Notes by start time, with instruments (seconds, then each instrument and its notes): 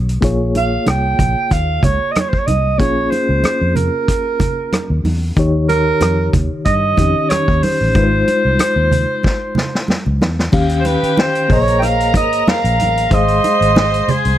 Already playing: fingered electric bass B1, reed electric piano D#3 D#4 G4 C#5
0.09 closed hi-hat
0.21 fingered electric bass A#1, reed electric piano A#3 F4 G#4 C#5, kick, closed hi-hat, muted conga
0.55 alto saxophone F5, closed hi-hat, muted conga
0.86 fingered electric bass C2, alto saxophone G5, cross-stick, closed hi-hat, high conga
1.19 fingered electric bass A#1, kick, closed hi-hat, low conga
1.51 fingered electric bass D#2, alto saxophone F5, kick, closed hi-hat, muted conga
1.83 fingered electric bass C#2, alto saxophone C#5, kick, closed hi-hat, muted conga, low conga
2.11 alto saxophone D#5, closed hi-hat
2.16 alto saxophone C#5, cross-stick, high conga
2.29 alto saxophone C5, kick
2.38 alto saxophone C#5
2.47 fingered electric bass C2, alto saxophone D#5, closed hi-hat, high conga
2.78 fingered electric bass A#1, reed electric piano A#3 C#4 F4 G#4, alto saxophone C#5, kick, closed hi-hat, muted conga
3.10 alto saxophone C5, closed hi-hat, muted conga
3.29 fingered electric bass C#2
3.44 muted fingered electric bass stroke, cross-stick, closed hi-hat, high conga
3.61 fingered electric bass F2
3.76 alto saxophone A#4, closed hi-hat, low conga
4.08 kick, cross-stick, closed hi-hat
4.40 kick, closed hi-hat, muted conga, low conga
4.72 cross-stick, closed hi-hat, high conga
4.90 fingered electric bass D#2
5.04 fingered electric bass E2, open hi-hat, high conga
5.36 fingered electric bass D#2, reed electric piano D#3 D#4 G4 C#5, kick, closed hi-hat, muted conga
5.69 alto saxophone A#4, closed hi-hat, muted conga
6.01 fingered electric bass F2, cross-stick, closed hi-hat, high conga
6.33 fingered electric bass D#2, kick, closed hi-hat, low conga
6.65 fingered electric bass G2, alto saxophone D#5, kick, closed hi-hat, muted conga
6.97 fingered electric bass F2, reed electric piano D#3 C#4 D#4 G4, kick, closed hi-hat, muted conga, low conga
7.29 alto saxophone C#5, muted fingered electric bass stroke, cross-stick, closed hi-hat, high conga
7.48 fingered electric bass D#2, kick
7.63 alto saxophone C5, open hi-hat, high conga
7.81 fingered electric bass A1
7.95 fingered electric bass G#1, reed electric piano G#3 D#4 F4 B4, kick, closed hi-hat, muted conga
8.04 reed electric piano C5
8.28 closed hi-hat, muted conga
8.45 fingered electric bass C2
8.59 cross-stick, closed hi-hat, high conga
8.76 fingered electric bass D#2
8.91 closed hi-hat, low conga
9.23 kick, snare, muted conga
9.55 snare, muted conga, low conga
9.75 snare
9.88 snare, high conga
10.06 fingered electric bass C#2, high conga
10.21 fingered electric bass E2, snare, high conga
10.39 snare
10.52 fingered electric bass D#2, reed electric piano D#3 C#4 G4 F5, violin section G4 G5, kick, crash, muted conga
10.69 closed hi-hat
10.80 alto saxophone C5
10.85 alto saxophone B4, closed hi-hat, muted conga
11.03 muted fingered electric bass stroke, closed hi-hat
11.17 alto saxophone C5, snare, high conga
11.35 closed hi-hat
11.48 fingered electric bass A#1, reed electric piano A#3 G#4 C5 C#5 D#5, violin section A#4 A#5, kick, open hi-hat, low conga
11.53 alto saxophone C#5
11.68 closed hi-hat
11.79 alto saxophone F5 G5, closed hi-hat, muted conga
12.00 closed hi-hat
12.14 fingered electric bass G#1, alto saxophone D#5, kick, closed hi-hat, muted conga
12.32 closed hi-hat
12.48 alto saxophone F5, snare, high conga
12.64 fingered electric bass A#1, closed hi-hat
12.79 fingered electric bass A1, closed hi-hat, high conga
12.97 closed hi-hat
13.10 fingered electric bass G#1, reed electric piano G#3 G#4 C5 F5, violin section C5 C6, alto saxophone D#5, kick, closed hi-hat, muted conga
13.28 closed hi-hat
13.44 closed hi-hat, muted conga
13.61 fingered electric bass G#1, closed hi-hat
13.76 snare, high conga
13.94 closed hi-hat
14.08 alto saxophone G#4, muted fingered electric bass stroke, closed hi-hat, low conga
14.25 fingered electric bass C2, closed hi-hat